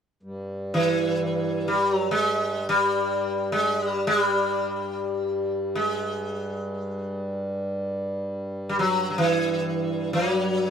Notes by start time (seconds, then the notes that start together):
0.23 G2 G3
0.74 E3
1.68 G3
1.93 F#3
2.11 G#3
2.69 G3
3.52 G#3
3.84 G3
4.07 G#3
4.19 G3
5.75 G#3
8.69 G3
8.79 F#3
9.10 F#3
9.18 E3
10.13 F#3